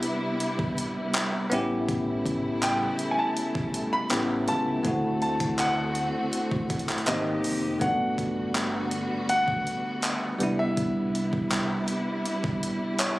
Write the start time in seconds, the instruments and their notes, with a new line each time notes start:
Already playing: string section C3 G3 B3 E4, tine electric piano B3 D4 E4 G4, grand piano E5
0.03 closed hi-hat
0.40 closed hi-hat
0.59 kick
0.78 closed hi-hat
1.14 clap, closed hi-hat
1.50 fingered electric bass A1, string section C#3 A3 E4, tine electric piano B3 C#4 E4, closed hi-hat
1.54 tine electric piano G4
1.89 kick, closed hi-hat
2.26 kick, closed hi-hat
2.62 grand piano G5, clap, closed hi-hat
2.99 closed hi-hat
3.11 grand piano G#5
3.19 grand piano A5
3.37 closed hi-hat
3.55 kick
3.74 closed hi-hat
3.93 grand piano B5
4.10 fingered electric bass A1, tine electric piano B3 C#4 E4 G4, string section E4, clap, closed hi-hat
4.48 fingered electric bass C#2, grand piano A5, closed hi-hat
4.83 fingered electric bass D2, string section D3 C4 F#4, tine electric piano A3 C4 E4, kick, closed hi-hat
4.88 tine electric piano F#4
5.22 grand piano A5, closed hi-hat
5.40 kick, closed hi-hat
5.59 grand piano F#5, clap, closed hi-hat
5.95 closed hi-hat
6.33 closed hi-hat
6.51 kick
6.70 kick, closed hi-hat
6.79 closed hi-hat
6.89 clap, closed hi-hat
6.98 closed hi-hat
7.06 fingered electric bass G#1, string section D#3 G#3 C4 G4, tine electric piano A#3 C4 D#4 G4, grand piano D#5, clap, closed hi-hat
7.44 fingered electric bass F1, open hi-hat
7.80 fingered electric bass G1, string section D3 G3 B3 F#4, tine electric piano A3 B3 D4, grand piano F#5, kick, closed hi-hat
7.84 tine electric piano F#4
8.18 kick, closed hi-hat
8.55 clap, closed hi-hat
8.91 closed hi-hat
9.29 grand piano F#5, closed hi-hat
9.48 kick
9.67 closed hi-hat
10.02 clap, closed hi-hat
10.39 fingered electric bass C2, string section C3 G3 E4, tine electric piano G3 B3 D4, closed hi-hat
10.43 tine electric piano E4
10.59 grand piano E5
10.77 kick, closed hi-hat
11.15 closed hi-hat
11.33 kick
11.51 clap, closed hi-hat
11.88 closed hi-hat
12.26 closed hi-hat
12.44 kick
12.63 closed hi-hat
12.99 tine electric piano C#5, clap, closed hi-hat